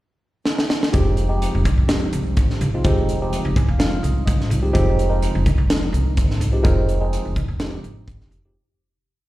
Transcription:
0.45 snare
0.58 snare
0.70 snare
0.83 snare
0.92 F1 F3 G#3 C4 D#4 G4, kick, closed hi-hat
1.17 closed hi-hat
1.29 F3 G#3 C4 D#4 G4
1.42 closed hi-hat
1.55 F1
1.65 C2 D#4 A#4, kick, closed hi-hat
1.78 F1
1.88 F3 G#3 C4 D#4 G4, snare, closed hi-hat
2.13 C2, closed hi-hat
2.37 G#1, kick, closed hi-hat
2.50 snare
2.61 C2, closed hi-hat
2.74 F3 G#3 C4 D#4 F4
2.84 F1 F3 G#3 C4 D#4 G4, kick, closed hi-hat
3.09 closed hi-hat
3.21 F3 G#3 C4 D#4 G4
3.33 closed hi-hat
3.45 F1
3.56 C2 D#4 G4 G#5, kick, closed hi-hat
3.68 F1 F5
3.79 F3 G#3 C4 D#4 F4 F5, snare, closed hi-hat
4.03 C2 D#5, closed hi-hat
4.26 G#1 D#5, kick, closed hi-hat
4.41 snare
4.50 C2, closed hi-hat
4.62 F3 G#3 C4 D#4 G4
4.73 F1 F3 G#3 C4 D#4 G4, kick, closed hi-hat
4.99 closed hi-hat
5.09 F3 G#3 C4 D#4 A#4
5.22 closed hi-hat
5.35 F1
5.45 C2 D#4 F4, kick, closed hi-hat
5.58 F1
5.70 F3 G#3 C4 D#4 A#4, snare, closed hi-hat
5.93 C2, closed hi-hat
6.17 G#1, kick, closed hi-hat
6.31 snare
6.40 C2, closed hi-hat
6.52 F3 G#3 C4 D#4 G4
6.63 F1 F3 G#3 C4 D#4 A#4, kick, closed hi-hat
6.89 closed hi-hat
7.00 F3 G#3 C4 D#4 G#4
7.13 closed hi-hat
7.25 F1
7.36 C2 D#4 G#4, kick, closed hi-hat
7.48 F1
7.60 F3 G#3 C4 D#4 G4, snare, closed hi-hat
7.84 G#1, closed hi-hat
8.08 G1, kick, closed hi-hat
8.21 snare
8.31 F1, closed hi-hat
8.45 F3 G#3 C4 D#4 G4

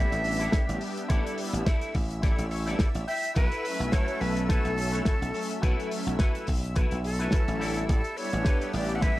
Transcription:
Already playing: G3 B3 D4 E4 G4 A4 D5 E5 E6
0.12 A1, closed hi-hat
0.24 open hi-hat
0.39 E4 G4 A4 D5, closed hi-hat
0.52 kick, snare, closed hi-hat
0.69 A1, closed hi-hat
0.81 muted clean electric guitar stroke, open hi-hat
0.97 closed hi-hat
1.08 A1 E4 G4 A4 D5, kick, closed hi-hat
1.27 closed hi-hat
1.38 G3 B3 D4 E4, open hi-hat
1.53 A1 G3 B3 D4 E4, closed hi-hat
1.65 E4 G4 A4 E5, kick, snare, closed hi-hat
1.81 closed hi-hat
1.94 A1, kick, open hi-hat
2.11 closed hi-hat
2.22 E4 G4 A4 D5, kick, closed hi-hat
2.38 A1, closed hi-hat
2.51 C#5, open hi-hat
2.66 G3 B3 D4 E4 G4 A4 D5, closed hi-hat
2.79 D5, kick, snare, closed hi-hat
2.95 A1, closed hi-hat
3.07 E5 G5, muted clean electric guitar stroke, open hi-hat
3.24 closed hi-hat
3.34 B1 E4 F#4 A4 B4, kick, closed hi-hat
3.52 closed hi-hat
3.64 F#3 A3 C#4 E4, open hi-hat
3.79 B1 F#3 A3 C#4 A4, closed hi-hat
3.92 E4 F#4 A4 B4 C#5, kick, snare, closed hi-hat
4.08 closed hi-hat
4.21 B1 B4, open hi-hat
4.37 closed hi-hat
4.48 E4 F#4 A4 B4, kick, snare, closed hi-hat
4.65 B1, closed hi-hat
4.78 open hi-hat
4.92 E4 F#4 A4 C#5, closed hi-hat
5.05 A4, kick, snare, closed hi-hat
5.22 B1, closed hi-hat
5.33 muted clean electric guitar stroke, open hi-hat
5.50 closed hi-hat
5.61 B1 E4 F#4 A4 B4, kick, closed hi-hat
5.80 closed hi-hat
5.91 F#3 A3 C#4 E4, open hi-hat
6.07 B1 F#3 A3 C#4 E4, closed hi-hat
6.18 E4 F#4 A4 B4, kick, snare, closed hi-hat
6.35 closed hi-hat
6.47 B1, kick, open hi-hat
6.64 closed hi-hat
6.75 E4 F#4 A4 B4, kick, closed hi-hat
6.91 B1, closed hi-hat
7.04 A4, open hi-hat
7.19 F#3 A3 C#4 E4 F#4 A4 B4, closed hi-hat
7.31 kick, snare, closed hi-hat
7.48 A1 F#3 A3 C#4 E4, closed hi-hat
7.59 G3 B3 D4 E4 G4 A4 D5, open hi-hat
7.76 closed hi-hat
7.89 A1 A4 E5 E6, kick, closed hi-hat
8.04 closed hi-hat
8.17 G3 B3 D4 E4 C#5, open hi-hat
8.33 A1 G3 B3 D4 G4, closed hi-hat
8.44 E4 G4 A4 B4, kick, snare, closed hi-hat
8.61 closed hi-hat
8.73 A1 D5, open hi-hat
8.89 closed hi-hat
8.95 F#5
9.01 E4 G4 A4 B4 E5, kick, snare, closed hi-hat

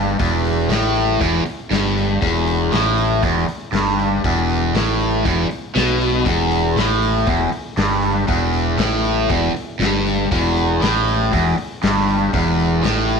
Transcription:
Already playing: G1 G2
0.19 E1 E2, kick, open hi-hat
0.45 open hi-hat
0.69 A1 A2, snare, open hi-hat
0.96 open hi-hat
1.20 E1 E2, kick, open hi-hat
1.45 muted fingered electric bass stroke, muted overdriven electric guitar stroke, open hi-hat
1.71 G1 G2, snare, open hi-hat
1.86 snare
1.98 open hi-hat
2.22 E1 E2, kick, open hi-hat
2.47 open hi-hat
2.72 A1 A2, snare, open hi-hat
2.98 open hi-hat
3.23 E1 E2, kick, open hi-hat
3.48 muted overdriven electric guitar stroke, muted fingered electric bass stroke, open hi-hat
3.72 G1 G2, snare, open hi-hat
3.88 snare
3.99 open hi-hat
4.24 E1 E2, kick, open hi-hat
4.50 open hi-hat
4.74 A1 A2, snare, open hi-hat
5.00 open hi-hat
5.25 E1 E2, kick, open hi-hat
5.50 muted fingered electric bass stroke, muted overdriven electric guitar stroke, open hi-hat
5.75 B1 B2, snare, open hi-hat
6.01 open hi-hat
6.26 E1 E2, kick, open hi-hat
6.51 open hi-hat
6.75 A1 A2, snare, open hi-hat
7.02 open hi-hat
7.27 E1 E2, kick, open hi-hat
7.51 muted fingered electric bass stroke, muted overdriven electric guitar stroke, open hi-hat
7.77 G1 G2, snare, open hi-hat
7.92 snare
8.03 open hi-hat
8.27 E1 E2, kick, open hi-hat
8.53 open hi-hat
8.78 A1 A2, snare, open hi-hat
9.04 open hi-hat
9.29 E1 E2, kick, open hi-hat
9.54 muted fingered electric bass stroke, muted overdriven electric guitar stroke, open hi-hat
9.79 G1 G2, snare, open hi-hat
10.06 open hi-hat
10.31 E1 E2, kick, open hi-hat
10.57 open hi-hat
10.81 A1 A2, snare, open hi-hat
11.08 open hi-hat
11.32 E1 E2, kick, open hi-hat
11.58 muted fingered electric bass stroke, muted overdriven electric guitar stroke, open hi-hat
11.83 G1 G2, snare, open hi-hat
11.97 snare
12.08 open hi-hat
12.33 E1 E2, kick, open hi-hat
12.59 open hi-hat
12.83 A1 A2, snare, open hi-hat
13.09 open hi-hat

